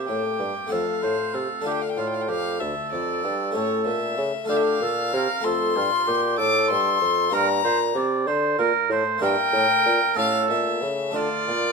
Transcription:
Already playing: harpsichord A#3 C4 E4, oboe G4
0.07 harpsichord A2, bassoon A2, violin G5
0.39 harpsichord G2, bassoon G2
0.67 harpsichord A3 C4 F4
0.71 harpsichord F2, bassoon F2, oboe A4, violin F5
1.02 harpsichord A2, bassoon A2, oboe C5
1.34 harpsichord C3, bassoon C3, oboe A4
1.60 harpsichord A3 D4 F4
1.65 harpsichord D3, bassoon D3, oboe G4, violin F5
1.74 violin G5
1.82 violin F5
1.89 violin G5
1.97 harpsichord A2, bassoon A2, oboe F4, violin F5
2.07 violin G5
2.14 violin F5
2.21 violin G5
2.28 harpsichord F2, bassoon F2, oboe G4, violin F5
2.60 harpsichord D2, bassoon D2, oboe A4, violin E5
2.92 harpsichord F2, bassoon F2, violin D5
3.24 harpsichord G2, bassoon G2
3.51 harpsichord A3 C#4 G4, violin C#5
3.55 harpsichord A2, bassoon A2, oboe A4
3.86 harpsichord A#2, bassoon A#2, violin E5
4.18 bassoon C#3, harpsichord C#3
4.44 harpsichord A3 F4 A4, violin F5
4.49 harpsichord D3, bassoon D3, oboe G4
4.56 violin E5
4.62 violin F5
4.80 harpsichord A#2, bassoon A#2, oboe A4
5.13 harpsichord C3, bassoon C3, oboe A#4
5.40 harpsichord A3 F4 A4
5.44 harpsichord F2, bassoon F2, oboe A4, violin C6
5.76 harpsichord G2, bassoon G2, oboe F4
6.07 bassoon A#2, harpsichord A#2, oboe G4
6.38 bassoon A2, harpsichord A2, oboe A4, violin D6
6.70 bassoon G2, harpsichord G2, violin C6
7.01 bassoon F2, harpsichord F2
7.29 bassoon G2, harpsichord A#3 D4 G4, violin A#5
7.34 harpsichord G2, oboe A#4
7.64 bassoon A#2, harpsichord A#2, oboe C5
7.95 bassoon C3, harpsichord C3, oboe D5
8.27 harpsichord D3, bassoon D3, oboe C5
8.59 bassoon A#2, harpsichord A#2, oboe A#4
8.89 bassoon A2, harpsichord A2, oboe C5
9.18 bassoon G2, harpsichord A#3 E4 G4
9.22 harpsichord G2, oboe A#4, violin G5
9.52 bassoon A2, harpsichord A2
9.86 bassoon A#2, harpsichord A#2
10.14 bassoon A2, harpsichord A3 C#4 G4, oboe A4
10.18 harpsichord A2, violin F5
10.50 bassoon A#2, harpsichord A#2, violin E5
10.82 bassoon C#3, harpsichord C#3
11.10 bassoon D3, harpsichord A3 D4 F4
11.15 harpsichord D3, oboe F4, violin D5
11.47 bassoon A#2, harpsichord A#2

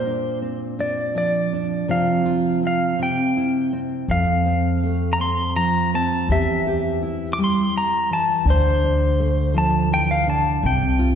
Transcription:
Already playing: nylon-string guitar A#2, pedal steel guitar C5
0.06 nylon-string guitar D4
0.42 nylon-string guitar C4
0.79 nylon-string guitar D4, pedal steel guitar D5
1.15 nylon-string guitar F3, pedal steel guitar D5
1.53 nylon-string guitar D4
1.88 nylon-string guitar C3 F3 C4 F4, pedal steel guitar F5
2.25 nylon-string guitar F4
2.63 nylon-string guitar C4, pedal steel guitar F5
2.99 nylon-string guitar C3, pedal steel guitar G5
3.37 nylon-string guitar E4
3.73 nylon-string guitar C4
4.08 upright bass F2, nylon-string guitar F2, pedal steel guitar F5
4.46 nylon-string guitar C4
4.83 nylon-string guitar A3
5.13 pedal steel guitar A#5
5.20 nylon-string guitar C4, pedal steel guitar C6
5.56 nylon-string guitar F3, pedal steel guitar A#5
5.94 nylon-string guitar C4, pedal steel guitar A5
6.29 upright bass E2, nylon-string guitar E3 C4 E4 G4, pedal steel guitar E5
6.67 nylon-string guitar G4
7.03 nylon-string guitar E4
7.33 pedal steel guitar D6
7.38 nylon-string guitar G3
7.44 pedal steel guitar C6
7.78 pedal steel guitar A#5
8.11 nylon-string guitar E3, pedal steel guitar A5
8.45 upright bass D2, nylon-string guitar D3
8.50 pedal steel guitar C5
8.84 nylon-string guitar D4
9.20 nylon-string guitar A3
9.54 nylon-string guitar F3, pedal steel guitar A5
9.91 nylon-string guitar E3, pedal steel guitar G5
10.11 pedal steel guitar F5
10.27 nylon-string guitar D3, pedal steel guitar A5
10.62 upright bass C2, nylon-string guitar C3, pedal steel guitar G5
10.99 nylon-string guitar F4

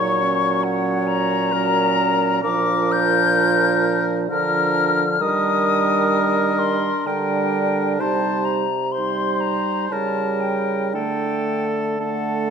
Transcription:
Already playing: bassoon A#2, french horn F#3, clarinet D#4, oboe C#5, flute C#6
0.21 clarinet C#4
0.64 oboe C#5, flute F#5
1.07 flute A#5
1.53 french horn F#3, clarinet C#4, oboe A#4
2.43 bassoon A#2, french horn F3, clarinet D4, oboe A#4, flute D6
2.92 flute G6
4.29 bassoon D3, french horn F3, clarinet D4, oboe A#4, flute F6
5.20 bassoon D#3, french horn G3, clarinet D4, oboe A#4, flute D#6
6.59 flute C6
7.06 bassoon D3, french horn G3, clarinet D4, oboe A#4, flute G5
7.97 bassoon C3, french horn G3, clarinet D#4, oboe C5, flute A5
8.45 flute A#5
8.92 french horn G3, clarinet D#4, oboe C5, flute C6
9.40 flute A#5
9.89 bassoon C#3, french horn G3, clarinet E4, oboe A#4, flute A5
10.40 flute G5
10.92 bassoon D3, french horn A3, clarinet D4, oboe A4, flute G5
11.99 french horn A3, clarinet D4, oboe A4, flute F#5

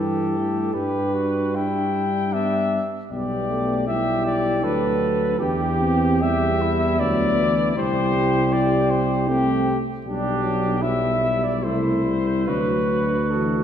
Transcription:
Already playing: tuba G2, euphonium E4, cornet G4, flugelhorn A4
0.00 trombone E3
0.37 trombone A3
0.73 tuba G2, trombone G3, euphonium D4, flugelhorn G4, cornet B4
1.14 flugelhorn F#4
1.56 flugelhorn E4, cornet G5
2.33 euphonium B3, flugelhorn D4, cornet E5
3.10 tuba B1, trombone G3, euphonium B3, flugelhorn G4, cornet D5
3.49 trombone A3
3.87 trombone G3, euphonium E4, flugelhorn G4, cornet E5
4.26 cornet D5
4.62 tuba D2, trombone F#3, euphonium D4, flugelhorn A4, cornet B4
5.39 tuba E2, trombone E3, euphonium D4, cornet G4, flugelhorn G4
5.80 euphonium C4
6.21 trombone G3, euphonium B3, flugelhorn G4, cornet E5
6.62 flugelhorn E4
6.99 tuba D2, trombone F#3, cornet D5
7.39 trombone E3
7.76 tuba C2, trombone G3, euphonium E4, flugelhorn G4, cornet C5
8.53 cornet D5
8.90 cornet C5
9.28 trombone A3, euphonium C4, cornet G4
10.06 tuba B1, trombone G3, euphonium D4, flugelhorn D4, cornet G4
10.43 trombone F#3
10.82 trombone G3, flugelhorn E4, euphonium G4, cornet E5
11.44 cornet D5
11.63 tuba C2, trombone A3, euphonium E4, flugelhorn E4, cornet C5
12.05 trombone G3
12.46 tuba D2, trombone F#3, euphonium D4, flugelhorn F#4, cornet B4
13.31 trombone E3, cornet A4

